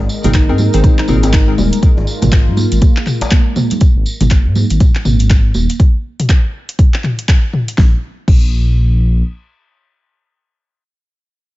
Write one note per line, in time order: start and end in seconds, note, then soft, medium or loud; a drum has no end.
0.00 3.78 G#3 medium
0.00 1.81 D#4 medium
0.00 3.78 A#4 medium
0.00 djembe tone medium
0.09 tambourine medium
0.23 0.51 G#1 medium
0.23 0.30 C4 medium
0.23 0.30 D#4 medium
0.23 0.30 G#4 medium
0.23 0.30 A#4 loud
0.23 closed hi-hat medium
0.23 mid tom medium
0.23 tambourine medium
0.23 djembe tone medium
0.23 high conga loud
0.23 low conga medium
0.34 0.48 D#4 medium
0.34 kick loud
0.34 clap loud
0.34 closed hi-hat soft
0.34 tambourine soft
0.49 0.68 G#2 medium
0.49 0.58 C4 medium
0.49 0.58 D#4 medium
0.49 0.58 G#4 medium
0.49 0.58 A#4 loud
0.58 tambourine loud
0.58 high conga loud
0.58 low conga medium
0.73 0.82 G#1 medium
0.73 0.83 D#3 medium
0.73 1.06 C4 medium
0.73 1.06 D#4 medium
0.73 1.06 G#4 medium
0.73 1.06 C5 medium
0.73 closed hi-hat medium
0.73 tambourine medium
0.84 0.97 D#4 medium
0.84 kick loud
0.84 closed hi-hat soft
0.84 mid tom medium
0.84 tambourine soft
0.84 low conga medium
0.99 1.08 D#4 medium
0.99 clap medium
1.08 1.55 G#1 medium
1.08 1.45 C4 medium
1.08 1.45 D#4 medium
1.08 1.45 G#4 medium
1.08 1.45 A#4 medium
1.08 mid tom medium
1.08 tambourine loud
1.08 djembe tone loud
1.08 high conga loud
1.23 1.29 C4 medium
1.23 closed hi-hat medium
1.23 tambourine medium
1.23 djembe slap loud
1.33 1.47 D#4 medium
1.33 kick loud
1.33 clap loud
1.33 closed hi-hat soft
1.33 tambourine soft
1.48 1.53 C4 medium
1.48 1.53 D#4 medium
1.48 1.53 G#4 medium
1.48 1.53 A#4 medium
1.58 1.70 D#1 medium
1.58 1.72 G3 medium
1.58 tambourine medium
1.58 djembe tone medium
1.58 high conga loud
1.73 closed hi-hat medium
1.73 tambourine medium
1.82 3.79 F4 medium
1.82 kick loud
1.82 closed hi-hat soft
1.82 tambourine soft
1.97 2.05 G#1 loud
1.97 djembe slap medium
1.97 djembe tone medium
2.07 tambourine medium
2.22 2.49 G#1 medium
2.22 closed hi-hat medium
2.22 mid tom loud
2.22 tambourine medium
2.22 djembe tone medium
2.22 high conga loud
2.22 low conga loud
2.32 kick loud
2.32 clap loud
2.32 closed hi-hat soft
2.47 2.66 G#2 medium
2.57 tambourine medium
2.57 high conga loud
2.57 low conga medium
2.72 2.80 G#1 medium
2.72 closed hi-hat medium
2.72 tambourine medium
2.81 kick loud
2.81 closed hi-hat soft
2.81 tambourine soft
2.81 high conga loud
2.97 clap medium
3.06 clap soft
3.06 mid tom medium
3.06 tambourine medium
3.21 closed hi-hat medium
3.21 tambourine soft
3.21 djembe slap loud
3.21 djembe tone medium
3.30 kick loud
3.30 clap loud
3.30 closed hi-hat soft
3.30 tambourine soft
3.30 high conga loud
3.56 mid tom medium
3.56 tambourine loud
3.56 high conga loud
3.70 closed hi-hat medium
3.70 tambourine medium
3.70 low conga medium
3.80 kick loud
3.80 closed hi-hat soft
3.80 tambourine soft
3.96 4.04 G#1 loud
4.06 tambourine medium
4.20 4.47 G#1 medium
4.20 closed hi-hat medium
4.20 mid tom loud
4.20 tambourine medium
4.20 high conga loud
4.20 low conga medium
4.30 kick loud
4.30 clap loud
4.30 closed hi-hat soft
4.30 tambourine soft
4.46 4.64 G#2 medium
4.55 tambourine medium
4.55 high conga medium
4.55 low conga medium
4.70 4.78 G#1 medium
4.70 closed hi-hat medium
4.70 tambourine soft
4.80 kick loud
4.80 closed hi-hat soft
4.80 mid tom medium
4.80 tambourine soft
4.80 low conga medium
4.95 clap medium
5.05 5.52 G#1 medium
5.05 mid tom medium
5.05 tambourine medium
5.05 high conga medium
5.19 closed hi-hat medium
5.19 tambourine soft
5.30 kick loud
5.30 clap loud
5.30 closed hi-hat soft
5.30 tambourine soft
5.54 5.67 D#1 medium
5.54 tambourine medium
5.54 high conga medium
5.69 closed hi-hat medium
5.69 tambourine soft
5.80 kick loud
5.80 closed hi-hat soft
6.20 closed hi-hat medium
6.20 mid tom medium
6.29 kick loud
6.29 clap loud
6.29 closed hi-hat soft
6.69 closed hi-hat medium
6.79 kick loud
6.79 closed hi-hat soft
6.94 clap medium
7.04 clap soft
7.04 mid tom medium
7.19 closed hi-hat medium
7.28 kick loud
7.28 clap loud
7.28 closed hi-hat soft
7.53 mid tom medium
7.68 closed hi-hat medium
7.78 7.94 A#1 loud
7.78 kick loud
7.78 snare medium
8.28 9.23 A#1 loud
8.28 kick loud
8.28 crash medium